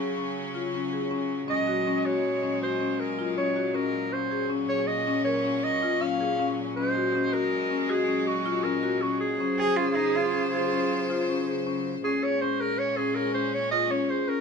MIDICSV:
0, 0, Header, 1, 5, 480
1, 0, Start_track
1, 0, Tempo, 376648
1, 1892, Time_signature, 7, 2, 24, 8
1, 18359, End_track
2, 0, Start_track
2, 0, Title_t, "Clarinet"
2, 0, Program_c, 0, 71
2, 1909, Note_on_c, 0, 75, 87
2, 2622, Note_on_c, 0, 73, 76
2, 2641, Note_off_c, 0, 75, 0
2, 3339, Note_off_c, 0, 73, 0
2, 3350, Note_on_c, 0, 72, 74
2, 3823, Note_on_c, 0, 70, 79
2, 3842, Note_off_c, 0, 72, 0
2, 4293, Note_off_c, 0, 70, 0
2, 4300, Note_on_c, 0, 73, 75
2, 4781, Note_on_c, 0, 70, 79
2, 4800, Note_off_c, 0, 73, 0
2, 5264, Note_on_c, 0, 72, 83
2, 5283, Note_off_c, 0, 70, 0
2, 5741, Note_off_c, 0, 72, 0
2, 5975, Note_on_c, 0, 73, 81
2, 6212, Note_on_c, 0, 75, 81
2, 6231, Note_off_c, 0, 73, 0
2, 6678, Note_off_c, 0, 75, 0
2, 6685, Note_on_c, 0, 73, 87
2, 7189, Note_on_c, 0, 75, 90
2, 7208, Note_off_c, 0, 73, 0
2, 7664, Note_on_c, 0, 77, 93
2, 7683, Note_off_c, 0, 75, 0
2, 8381, Note_off_c, 0, 77, 0
2, 8618, Note_on_c, 0, 72, 85
2, 9350, Note_on_c, 0, 70, 90
2, 9369, Note_off_c, 0, 72, 0
2, 10071, Note_on_c, 0, 68, 76
2, 10090, Note_off_c, 0, 70, 0
2, 10540, Note_on_c, 0, 66, 81
2, 10559, Note_off_c, 0, 68, 0
2, 11006, Note_on_c, 0, 70, 74
2, 11025, Note_off_c, 0, 66, 0
2, 11495, Note_on_c, 0, 66, 76
2, 11514, Note_off_c, 0, 70, 0
2, 11724, Note_off_c, 0, 66, 0
2, 11732, Note_on_c, 0, 68, 83
2, 14801, Note_off_c, 0, 68, 0
2, 15342, Note_on_c, 0, 68, 78
2, 15592, Note_on_c, 0, 73, 75
2, 15612, Note_off_c, 0, 68, 0
2, 15815, Note_on_c, 0, 72, 69
2, 15834, Note_off_c, 0, 73, 0
2, 16064, Note_on_c, 0, 70, 74
2, 16083, Note_off_c, 0, 72, 0
2, 16294, Note_on_c, 0, 73, 77
2, 16313, Note_off_c, 0, 70, 0
2, 16536, Note_on_c, 0, 68, 78
2, 16555, Note_off_c, 0, 73, 0
2, 16764, Note_on_c, 0, 70, 78
2, 16783, Note_off_c, 0, 68, 0
2, 16996, Note_off_c, 0, 70, 0
2, 17003, Note_on_c, 0, 72, 81
2, 17249, Note_on_c, 0, 73, 91
2, 17268, Note_off_c, 0, 72, 0
2, 17469, Note_off_c, 0, 73, 0
2, 17476, Note_on_c, 0, 75, 90
2, 17728, Note_on_c, 0, 73, 81
2, 17747, Note_off_c, 0, 75, 0
2, 17965, Note_on_c, 0, 72, 78
2, 17984, Note_off_c, 0, 73, 0
2, 18206, Note_on_c, 0, 70, 82
2, 18225, Note_off_c, 0, 72, 0
2, 18359, Note_off_c, 0, 70, 0
2, 18359, End_track
3, 0, Start_track
3, 0, Title_t, "Cello"
3, 0, Program_c, 1, 42
3, 12217, Note_on_c, 1, 68, 90
3, 12440, Note_on_c, 1, 65, 84
3, 12459, Note_off_c, 1, 68, 0
3, 12628, Note_off_c, 1, 65, 0
3, 12637, Note_on_c, 1, 65, 56
3, 12691, Note_on_c, 1, 63, 76
3, 12710, Note_off_c, 1, 65, 0
3, 12940, Note_on_c, 1, 65, 78
3, 12959, Note_off_c, 1, 63, 0
3, 13406, Note_off_c, 1, 65, 0
3, 13413, Note_on_c, 1, 65, 80
3, 14323, Note_off_c, 1, 65, 0
3, 18359, End_track
4, 0, Start_track
4, 0, Title_t, "Marimba"
4, 0, Program_c, 2, 12
4, 224, Note_on_c, 2, 61, 59
4, 489, Note_off_c, 2, 61, 0
4, 693, Note_on_c, 2, 65, 65
4, 827, Note_off_c, 2, 65, 0
4, 946, Note_on_c, 2, 61, 69
4, 1077, Note_off_c, 2, 61, 0
4, 1182, Note_on_c, 2, 68, 61
4, 1314, Note_off_c, 2, 68, 0
4, 1416, Note_on_c, 2, 61, 67
4, 1684, Note_off_c, 2, 61, 0
4, 1889, Note_on_c, 2, 61, 75
4, 2025, Note_off_c, 2, 61, 0
4, 2132, Note_on_c, 2, 66, 62
4, 2267, Note_off_c, 2, 66, 0
4, 2383, Note_on_c, 2, 61, 77
4, 2515, Note_off_c, 2, 61, 0
4, 2613, Note_on_c, 2, 66, 64
4, 2882, Note_off_c, 2, 66, 0
4, 3100, Note_on_c, 2, 61, 63
4, 3233, Note_off_c, 2, 61, 0
4, 3333, Note_on_c, 2, 66, 59
4, 3468, Note_off_c, 2, 66, 0
4, 3575, Note_on_c, 2, 61, 67
4, 3844, Note_off_c, 2, 61, 0
4, 4062, Note_on_c, 2, 65, 70
4, 4195, Note_off_c, 2, 65, 0
4, 4308, Note_on_c, 2, 61, 70
4, 4439, Note_off_c, 2, 61, 0
4, 4537, Note_on_c, 2, 66, 62
4, 4671, Note_off_c, 2, 66, 0
4, 4770, Note_on_c, 2, 61, 72
4, 5040, Note_off_c, 2, 61, 0
4, 5257, Note_on_c, 2, 61, 70
4, 5391, Note_off_c, 2, 61, 0
4, 5496, Note_on_c, 2, 68, 68
4, 5631, Note_off_c, 2, 68, 0
4, 5733, Note_on_c, 2, 61, 73
4, 5869, Note_off_c, 2, 61, 0
4, 5971, Note_on_c, 2, 68, 70
4, 6241, Note_off_c, 2, 68, 0
4, 6462, Note_on_c, 2, 61, 73
4, 6595, Note_off_c, 2, 61, 0
4, 6694, Note_on_c, 2, 70, 61
4, 6830, Note_off_c, 2, 70, 0
4, 6941, Note_on_c, 2, 61, 67
4, 7209, Note_off_c, 2, 61, 0
4, 7423, Note_on_c, 2, 65, 75
4, 7556, Note_off_c, 2, 65, 0
4, 7661, Note_on_c, 2, 61, 71
4, 7795, Note_off_c, 2, 61, 0
4, 7908, Note_on_c, 2, 68, 64
4, 8039, Note_off_c, 2, 68, 0
4, 8152, Note_on_c, 2, 61, 68
4, 8416, Note_off_c, 2, 61, 0
4, 8630, Note_on_c, 2, 61, 75
4, 8761, Note_off_c, 2, 61, 0
4, 8861, Note_on_c, 2, 66, 69
4, 8994, Note_off_c, 2, 66, 0
4, 9110, Note_on_c, 2, 61, 76
4, 9241, Note_off_c, 2, 61, 0
4, 9347, Note_on_c, 2, 66, 65
4, 9613, Note_off_c, 2, 66, 0
4, 9821, Note_on_c, 2, 61, 72
4, 9954, Note_off_c, 2, 61, 0
4, 10054, Note_on_c, 2, 66, 73
4, 10190, Note_off_c, 2, 66, 0
4, 10296, Note_on_c, 2, 61, 65
4, 10565, Note_off_c, 2, 61, 0
4, 10777, Note_on_c, 2, 65, 75
4, 10911, Note_off_c, 2, 65, 0
4, 11022, Note_on_c, 2, 61, 75
4, 11155, Note_off_c, 2, 61, 0
4, 11251, Note_on_c, 2, 66, 65
4, 11387, Note_off_c, 2, 66, 0
4, 11500, Note_on_c, 2, 61, 66
4, 11767, Note_off_c, 2, 61, 0
4, 11985, Note_on_c, 2, 61, 74
4, 12117, Note_off_c, 2, 61, 0
4, 12227, Note_on_c, 2, 68, 68
4, 12358, Note_off_c, 2, 68, 0
4, 12469, Note_on_c, 2, 61, 73
4, 12600, Note_off_c, 2, 61, 0
4, 12704, Note_on_c, 2, 68, 66
4, 12970, Note_off_c, 2, 68, 0
4, 13180, Note_on_c, 2, 61, 67
4, 13313, Note_off_c, 2, 61, 0
4, 13430, Note_on_c, 2, 68, 67
4, 13560, Note_off_c, 2, 68, 0
4, 13666, Note_on_c, 2, 61, 67
4, 13931, Note_off_c, 2, 61, 0
4, 14145, Note_on_c, 2, 65, 69
4, 14277, Note_off_c, 2, 65, 0
4, 14390, Note_on_c, 2, 61, 65
4, 14520, Note_off_c, 2, 61, 0
4, 14630, Note_on_c, 2, 68, 56
4, 14760, Note_off_c, 2, 68, 0
4, 14870, Note_on_c, 2, 61, 69
4, 15134, Note_off_c, 2, 61, 0
4, 15349, Note_on_c, 2, 61, 72
4, 15479, Note_off_c, 2, 61, 0
4, 15585, Note_on_c, 2, 68, 61
4, 15716, Note_off_c, 2, 68, 0
4, 15828, Note_on_c, 2, 61, 70
4, 15958, Note_off_c, 2, 61, 0
4, 16064, Note_on_c, 2, 68, 61
4, 16329, Note_off_c, 2, 68, 0
4, 16530, Note_on_c, 2, 61, 63
4, 16665, Note_off_c, 2, 61, 0
4, 16779, Note_on_c, 2, 68, 65
4, 16911, Note_off_c, 2, 68, 0
4, 17008, Note_on_c, 2, 61, 60
4, 17277, Note_off_c, 2, 61, 0
4, 17486, Note_on_c, 2, 65, 69
4, 17622, Note_off_c, 2, 65, 0
4, 17716, Note_on_c, 2, 61, 73
4, 17854, Note_off_c, 2, 61, 0
4, 17954, Note_on_c, 2, 68, 63
4, 18093, Note_off_c, 2, 68, 0
4, 18197, Note_on_c, 2, 61, 71
4, 18359, Note_off_c, 2, 61, 0
4, 18359, End_track
5, 0, Start_track
5, 0, Title_t, "String section"
5, 0, Program_c, 3, 48
5, 0, Note_on_c, 3, 49, 72
5, 0, Note_on_c, 3, 54, 66
5, 0, Note_on_c, 3, 61, 83
5, 1856, Note_off_c, 3, 49, 0
5, 1856, Note_off_c, 3, 61, 0
5, 1903, Note_on_c, 3, 46, 72
5, 1907, Note_on_c, 3, 56, 76
5, 5230, Note_off_c, 3, 56, 0
5, 5256, Note_on_c, 3, 61, 84
5, 8570, Note_off_c, 3, 54, 0
5, 8584, Note_off_c, 3, 61, 0
5, 8628, Note_on_c, 3, 54, 66
5, 8637, Note_on_c, 3, 56, 81
5, 11931, Note_off_c, 3, 46, 0
5, 11953, Note_off_c, 3, 56, 0
5, 11962, Note_on_c, 3, 49, 73
5, 11969, Note_on_c, 3, 72, 82
5, 15288, Note_off_c, 3, 54, 0
5, 15293, Note_off_c, 3, 49, 0
5, 15296, Note_off_c, 3, 72, 0
5, 15333, Note_on_c, 3, 46, 69
5, 15335, Note_on_c, 3, 61, 79
5, 15343, Note_on_c, 3, 56, 63
5, 18359, Note_off_c, 3, 46, 0
5, 18359, Note_off_c, 3, 56, 0
5, 18359, Note_off_c, 3, 61, 0
5, 18359, End_track
0, 0, End_of_file